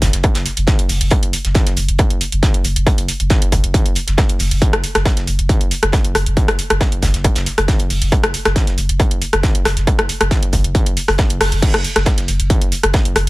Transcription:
0.02 sub bass F#1, kick, snare, closed hi-hat, open hi-hat
0.13 sub bass F#1, snare, closed hi-hat
0.23 kick, closed hi-hat
0.35 sub bass F#1, snare, closed hi-hat
0.45 snare, open hi-hat
0.57 sub bass F#1, closed hi-hat
0.67 kick, snare, closed hi-hat
0.79 sub bass F#1, closed hi-hat
0.89 sub bass F#1, open hi-hat
1.01 sub bass F#1, closed hi-hat
1.11 kick, closed hi-hat
1.23 sub bass F#1, closed hi-hat
1.33 closed hi-hat, open hi-hat
1.45 sub bass F#1, snare, closed hi-hat
1.55 kick, snare, closed hi-hat
1.66 sub bass F#1, snare, closed hi-hat
1.77 sub bass F#1, closed hi-hat, open hi-hat
1.89 sub bass F#1, closed hi-hat
1.99 kick, closed hi-hat
2.10 sub bass F#1, closed hi-hat
2.21 closed hi-hat, open hi-hat
2.32 sub bass F#1, closed hi-hat
2.43 kick, snare, closed hi-hat
2.54 sub bass F#1, closed hi-hat
2.64 sub bass F#1, closed hi-hat, open hi-hat
2.76 sub bass F#1, closed hi-hat
2.87 kick, closed hi-hat
2.98 sub bass F#1, closed hi-hat
3.08 closed hi-hat, open hi-hat
3.20 sub bass F#1, closed hi-hat
3.30 kick, snare, closed hi-hat
3.42 sub bass F#1, closed hi-hat
3.52 sub bass F#1, kick, closed hi-hat, open hi-hat
3.64 sub bass F#1, closed hi-hat
3.74 kick, closed hi-hat
3.86 sub bass F#1, closed hi-hat
3.95 closed hi-hat, open hi-hat
4.07 sub bass F#1, snare, closed hi-hat
4.18 kick, snare, closed hi-hat
4.29 sub bass F#1, closed hi-hat
4.39 sub bass F#1, open hi-hat
4.51 sub bass F#1, closed hi-hat
4.62 kick, closed hi-hat
4.73 sub bass F#1, cross-stick, closed hi-hat
4.84 closed hi-hat, open hi-hat
4.95 sub bass F#1, cross-stick, snare, closed hi-hat
5.05 kick, snare, closed hi-hat
5.17 sub bass F#1, snare, closed hi-hat
5.27 sub bass F#1, closed hi-hat, open hi-hat
5.39 sub bass F#1, closed hi-hat
5.49 kick, closed hi-hat
5.61 sub bass F#1, closed hi-hat
5.71 closed hi-hat, open hi-hat
5.83 sub bass F#1, cross-stick, closed hi-hat
5.92 kick, snare, closed hi-hat
6.05 sub bass F#1, closed hi-hat
6.15 sub bass F#1, cross-stick, closed hi-hat, open hi-hat
6.26 sub bass F#1, closed hi-hat
6.37 kick, closed hi-hat
6.48 sub bass F#1, cross-stick, closed hi-hat
6.59 closed hi-hat, open hi-hat
6.70 sub bass F#1, cross-stick, closed hi-hat
6.81 kick, snare, closed hi-hat
6.92 sub bass F#1, closed hi-hat
7.02 sub bass F#1, kick, snare, closed hi-hat, open hi-hat
7.14 sub bass F#1, snare, closed hi-hat
7.24 kick, closed hi-hat
7.35 sub bass F#1, snare, closed hi-hat
7.46 snare, open hi-hat
7.58 sub bass F#1, cross-stick, closed hi-hat
7.68 kick, snare, closed hi-hat
7.79 sub bass F#1, closed hi-hat
7.90 sub bass F#1, open hi-hat
8.02 sub bass F#1, closed hi-hat
8.12 kick, closed hi-hat
8.23 sub bass F#1, cross-stick, closed hi-hat
8.34 closed hi-hat, open hi-hat
8.45 sub bass F#1, cross-stick, snare, closed hi-hat
8.56 kick, snare, closed hi-hat
8.67 sub bass F#1, snare, closed hi-hat
8.78 sub bass F#1, closed hi-hat, open hi-hat
8.89 sub bass F#1, closed hi-hat
9.00 kick, closed hi-hat
9.11 sub bass F#1, closed hi-hat
9.22 closed hi-hat, open hi-hat
9.33 sub bass F#1, cross-stick, closed hi-hat
9.43 kick, snare, closed hi-hat
9.55 sub bass F#1, closed hi-hat
9.65 sub bass F#1, cross-stick, snare, closed hi-hat, open hi-hat
9.77 sub bass F#1, snare, closed hi-hat
9.87 kick, closed hi-hat
9.99 sub bass F#1, cross-stick, closed hi-hat
10.09 closed hi-hat, open hi-hat
10.21 sub bass F#1, cross-stick, closed hi-hat
10.31 kick, snare, closed hi-hat
10.42 sub bass F#1, closed hi-hat
10.53 sub bass F#1, kick, closed hi-hat, open hi-hat
10.64 sub bass F#1, closed hi-hat
10.75 kick, closed hi-hat
10.86 sub bass F#1, closed hi-hat
10.97 closed hi-hat, open hi-hat
11.08 sub bass F#1, cross-stick, snare, open hi-hat
11.18 kick, snare, closed hi-hat
11.30 sub bass F#1, closed hi-hat
11.40 sub bass F#1, cross-stick, open hi-hat
11.52 sub bass F#1, closed hi-hat
11.62 kick, closed hi-hat, crash
11.74 sub bass F#1, cross-stick, closed hi-hat
11.84 closed hi-hat, open hi-hat
11.96 sub bass F#1, cross-stick, snare, closed hi-hat
12.05 kick, snare, closed hi-hat
12.18 sub bass F#1, snare, closed hi-hat
12.28 sub bass F#1, closed hi-hat, open hi-hat
12.40 sub bass F#1, closed hi-hat
12.50 kick, closed hi-hat
12.62 sub bass F#1, closed hi-hat
12.72 closed hi-hat, open hi-hat
12.83 sub bass F#1, cross-stick, closed hi-hat
12.94 kick, snare, closed hi-hat
13.05 sub bass F#1, closed hi-hat
13.16 sub bass F#1, cross-stick, closed hi-hat, open hi-hat

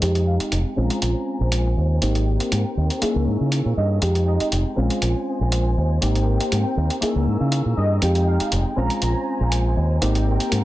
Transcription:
0.01 fingered electric bass F2, reed electric piano G#3 C4 D#4 G4, violin section G#3 D#4 G5, closed hi-hat
0.15 closed hi-hat
0.27 analog polysynth F5
0.40 analog polysynth F5, muted fingered electric bass stroke, closed hi-hat
0.52 fingered electric bass F1, closed hi-hat
0.76 fingered electric bass A#1, reed electric piano G#3 C4 C#4 F4, violin section C5 G#5, analog polysynth A#5
0.90 closed hi-hat
1.02 fingered electric bass A#1, closed hi-hat
1.40 fingered electric bass A#1
1.52 closed hi-hat
1.77 fingered electric bass D#2
2.01 fingered electric bass G#1, reed electric piano A#3 C4 D#4 G4, violin section C4 A#4 G5, closed hi-hat
2.15 closed hi-hat
2.40 closed hi-hat
2.52 fingered electric bass G#2, closed hi-hat
2.77 fingered electric bass D#2
2.90 closed hi-hat
3.01 reed electric piano A#3 D#4 E4 G#4, violin section C#4 E6, muted fingered electric bass stroke, closed hi-hat
3.15 fingered electric bass C#2
3.27 fingered electric bass G#2
3.40 fingered electric bass C#3
3.52 closed hi-hat
3.65 fingered electric bass A#2
3.77 fingered electric bass G2, analog polysynth D#5
4.01 fingered electric bass F2, reed electric piano G#3 C4 D#4 G4, violin section G#3 D#4 G5, closed hi-hat
4.15 closed hi-hat
4.27 analog polysynth D#5
4.40 analog polysynth D#5, muted fingered electric bass stroke, closed hi-hat
4.52 fingered electric bass F1, closed hi-hat
4.76 fingered electric bass A#1, reed electric piano G#3 C4 C#4 F4, violin section C5 G#5
4.90 closed hi-hat
5.02 fingered electric bass A#1, closed hi-hat
5.41 fingered electric bass A#1
5.52 closed hi-hat
5.77 fingered electric bass D#2
6.01 fingered electric bass G#1, reed electric piano A#3 C4 D#4 G4, violin section C4 A#4 G5, closed hi-hat
6.15 closed hi-hat
6.40 closed hi-hat
6.52 fingered electric bass G#2, closed hi-hat
6.77 fingered electric bass D#2
6.90 closed hi-hat
7.01 reed electric piano A#3 D#4 E4 G#4, violin section C#4 A#4 E6, muted fingered electric bass stroke, closed hi-hat
7.15 fingered electric bass C#2
7.27 fingered electric bass G#2
7.40 fingered electric bass C#3
7.52 closed hi-hat
7.65 fingered electric bass A#2
7.77 fingered electric bass G2, analog polysynth D#5
8.01 fingered electric bass F2, reed electric piano G#3 C4 D#4 G4, violin section G#3 D#4 G5, closed hi-hat
8.15 closed hi-hat
8.27 analog polysynth F5
8.40 analog polysynth F5, muted fingered electric bass stroke, closed hi-hat
8.52 fingered electric bass F1, closed hi-hat
8.76 fingered electric bass A#1, reed electric piano G#3 C4 C#4 F4, violin section C5 G#5, analog polysynth A#5
8.90 closed hi-hat
9.02 fingered electric bass A#1, closed hi-hat
9.40 fingered electric bass A#1
9.52 closed hi-hat
9.77 fingered electric bass D#2
10.01 fingered electric bass G#1, reed electric piano A#3 C4 D#4 G4, violin section C4 A#4 G5, closed hi-hat
10.15 closed hi-hat
10.40 closed hi-hat
10.52 fingered electric bass G#2, closed hi-hat

